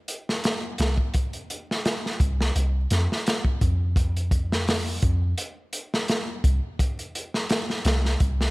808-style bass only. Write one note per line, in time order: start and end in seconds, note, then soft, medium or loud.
0.79 0.96 C2 medium
2.20 2.52 C2 loud
2.55 2.87 C2 medium
2.91 3.08 F2 medium
3.61 5.00 F2 medium
5.03 5.34 F2 loud
6.44 6.61 C2 medium
7.85 8.16 C2 medium
8.20 8.51 C2 medium